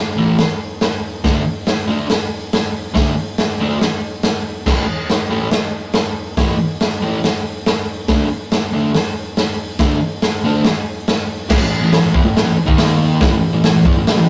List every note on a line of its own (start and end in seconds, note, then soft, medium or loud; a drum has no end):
0.17 0.34 A2 medium
0.17 0.35 E3 medium
0.17 0.35 A3 loud
0.38 snare loud
0.38 open hi-hat medium
0.81 snare loud
0.81 open hi-hat medium
1.24 1.41 D3 medium
1.24 1.41 A3 medium
1.24 1.42 D4 medium
1.24 kick loud
1.24 snare loud
1.24 open hi-hat medium
1.66 snare loud
1.66 open hi-hat medium
1.87 2.05 D3 medium
1.87 2.06 A3 medium
1.87 2.06 D4 loud
2.09 snare loud
2.09 open hi-hat medium
2.53 snare loud
2.53 open hi-hat medium
2.94 3.12 D3 medium
2.94 3.12 A3 medium
2.94 3.13 D4 medium
2.94 kick loud
2.94 snare loud
2.94 open hi-hat medium
3.38 snare loud
3.38 open hi-hat medium
3.60 3.77 D3 medium
3.60 3.78 A3 medium
3.60 3.78 D4 loud
3.81 snare loud
3.81 open hi-hat medium
4.23 snare loud
4.23 open hi-hat medium
4.66 4.83 A2 medium
4.66 4.84 E3 medium
4.66 4.84 A3 loud
4.66 kick loud
4.66 snare loud
4.66 crash loud
5.09 snare loud
5.09 open hi-hat medium
5.30 5.48 A2 medium
5.30 5.48 E3 medium
5.30 5.48 A3 loud
5.51 snare loud
5.51 open hi-hat medium
5.93 snare loud
5.93 open hi-hat medium
6.37 6.55 A2 medium
6.37 6.55 E3 loud
6.37 6.56 A3 loud
6.37 kick loud
6.37 snare loud
6.37 open hi-hat medium
6.80 snare loud
6.80 open hi-hat medium
7.02 7.19 A2 loud
7.02 7.20 E3 medium
7.02 7.19 A3 medium
7.24 snare loud
7.24 open hi-hat medium
7.66 snare loud
7.66 open hi-hat medium
8.08 8.26 D3 medium
8.08 8.26 A3 medium
8.08 8.27 D4 medium
8.08 kick loud
8.08 snare loud
8.08 open hi-hat medium
8.51 snare loud
8.51 open hi-hat medium
8.73 8.90 D3 medium
8.73 8.90 A3 loud
8.73 8.90 D4 medium
8.94 snare loud
8.94 open hi-hat medium
9.37 snare loud
9.37 open hi-hat medium
9.79 9.97 D3 loud
9.79 9.97 A3 loud
9.79 9.98 D4 loud
9.79 kick loud
9.79 snare loud
9.79 open hi-hat medium
10.22 snare loud
10.22 open hi-hat medium
10.44 10.61 D3 medium
10.44 10.62 A3 loud
10.44 10.62 D4 medium
10.64 snare loud
10.64 open hi-hat medium
11.08 snare loud
11.08 open hi-hat medium
11.49 11.60 A2 medium
11.49 11.60 E3 loud
11.49 kick loud
11.49 snare loud
11.49 crash loud
11.62 11.79 A2 medium
11.62 11.79 E3 medium
11.83 12.00 A2 medium
11.83 12.00 E3 medium
11.92 snare loud
11.92 open hi-hat medium
12.03 12.13 A2 medium
12.03 12.13 E3 medium
12.14 12.24 E3 medium
12.14 12.25 B3 loud
12.14 kick loud
12.24 12.42 A2 medium
12.24 12.42 E3 medium
12.36 snare loud
12.36 open hi-hat medium
12.45 12.56 A2 medium
12.45 12.57 E3 medium
12.57 muted distorted electric guitar stroke medium
12.66 13.20 D#3 medium
12.66 13.20 A#3 loud
12.66 13.20 D#4 loud
12.66 kick loud
12.78 snare loud
12.78 open hi-hat medium
13.21 13.30 A2 loud
13.21 13.30 E3 loud
13.21 kick loud
13.21 snare loud
13.21 open hi-hat medium
13.31 13.49 A2 medium
13.31 13.49 E3 medium
13.53 13.70 A2 medium
13.53 13.71 E3 medium
13.64 snare loud
13.64 open hi-hat medium
13.74 13.85 A2 medium
13.74 13.85 E3 medium
13.85 13.96 E3 loud
13.85 13.96 B3 loud
13.85 kick loud
13.98 14.14 A2 medium
13.98 14.14 E3 medium
14.07 snare loud
14.07 open hi-hat medium
14.18 14.28 A2 medium
14.18 14.28 E3 medium